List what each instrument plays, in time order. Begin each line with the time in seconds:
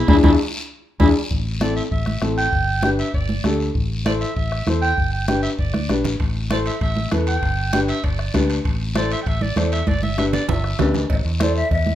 0.08 fingered electric bass E2, upright piano D4 E4 G#4, clarinet E4, bombo low, high conga, high timbale, long guiro
0.24 fingered electric bass E2, upright piano D4 E4 G#4, clarinet E4, bombo low, high conga, high timbale, long guiro
1.00 fingered electric bass E2, upright piano D4 E4 G#4, clarinet E4, bombo low, high conga, high timbale, long guiro
1.31 fingered electric bass A1, bombo low, high conga, long guiro
1.61 upright piano C4 E4 A4, clarinet D5, bombo rim, high conga, short guiro
1.76 clarinet E5, short guiro
1.91 fingered electric bass A1, clarinet E5, bombo low, high conga, long guiro
2.06 bombo rim, high conga
2.21 fingered electric bass A1, upright piano C4 E4 A4, bombo rim, high conga, short guiro
2.38 clarinet G5, short guiro
2.52 fingered electric bass G1, bombo low, high conga, long guiro
2.83 upright piano D4 G4 B4, clarinet G5, bombo rim, high conga, short guiro
2.99 clarinet E5, short guiro
3.14 fingered electric bass G1, clarinet D5, bombo low, high conga, long guiro
3.29 high conga
3.44 fingered electric bass D2, upright piano D4 G4 A4, bombo rim, high conga, short guiro
3.60 short guiro
3.75 fingered electric bass A1, bombo low, high conga, long guiro
4.06 upright piano E4 A4 C5, clarinet D5, bombo rim, high conga, short guiro
4.21 clarinet E5, short guiro
4.36 fingered electric bass A1, clarinet E5, bombo low, high conga, long guiro
4.52 bombo rim
4.67 fingered electric bass E2, upright piano E4 A4 C5, bombo rim, high conga, short guiro
4.82 clarinet G5, short guiro
4.97 fingered electric bass G1, bombo low, high conga, long guiro
5.12 clarinet G5
5.28 upright piano D4 G4 B4, clarinet G5, bombo rim, high conga, short guiro
5.43 clarinet E5, short guiro
5.59 fingered electric bass G1, clarinet D5, bombo low, high conga, long guiro
5.74 fingered electric bass D2, bombo rim, high conga
5.89 fingered electric bass B1, upright piano D4 G4 B4, bombo rim, high conga, short guiro
6.04 fingered electric bass A1, low conga, short guiro
6.20 fingered electric bass A1, bombo low, high conga, high timbale, long guiro
6.50 upright piano E4 A4 C5, clarinet D5, bombo rim, high conga, high timbale, short guiro
6.66 clarinet E5, high timbale, short guiro
6.81 fingered electric bass A1, clarinet E5, bombo low, high conga, high timbale, long guiro
6.96 high conga
7.12 fingered electric bass E2, upright piano E4 A4 B4, bombo rim, high conga, high timbale, low timbale, short guiro
7.27 clarinet G5, high timbale, short guiro
7.42 fingered electric bass G1, bombo low, high conga, high timbale, long guiro
7.73 upright piano D4 G4 B4, clarinet G5, bombo rim, high conga, high timbale, short guiro
7.88 clarinet E5, high timbale, short guiro
8.04 fingered electric bass G1, clarinet D5, bombo low, high conga, high timbale, long guiro
8.19 bombo rim
8.34 fingered electric bass D2, upright piano D4 G4 B4, bombo low, bombo rim, high conga, high timbale, low timbale, short guiro
8.50 high timbale, short guiro
8.65 fingered electric bass A1, bombo low, high conga, high timbale, long guiro
8.95 upright piano E4 A4 C5, clarinet D5, bombo rim, high conga, high timbale, short guiro
9.11 clarinet E5, high timbale, short guiro
9.23 fingered electric bass A1, clarinet G5, bombo low, high conga, long guiro
9.27 clarinet E5, high timbale
9.41 clarinet D5, high conga
9.56 fingered electric bass E2, upright piano E4 A4 D5, clarinet C5, bombo rim, high conga, high timbale, short guiro
9.72 clarinet E5, high timbale, short guiro
9.87 fingered electric bass G1, clarinet D5, bombo low, high conga, high timbale, long guiro
10.03 clarinet E5, high conga
10.17 upright piano D4 G4 B4, clarinet E5, bombo rim, high conga, high timbale, short guiro
10.33 clarinet D5, low conga, high timbale, short guiro
10.49 fingered electric bass G1, clarinet E5, bombo low, low conga, high timbale, long guiro
10.64 bombo rim
10.79 fingered electric bass D2, upright piano D4 G4 B4, bombo low, bombo rim, low conga, low timbale, short guiro
10.94 low conga, low timbale, short guiro
11.10 fingered electric bass A1, bombo low, cowbell, high conga, long guiro
11.25 fingered electric bass E2
11.40 upright piano E4 A4 C5, flute D5, bombo rim, high conga, short guiro
11.56 flute E5, short guiro
11.71 fingered electric bass E2, flute E5, bombo low, cowbell, high conga, long guiro
11.86 high conga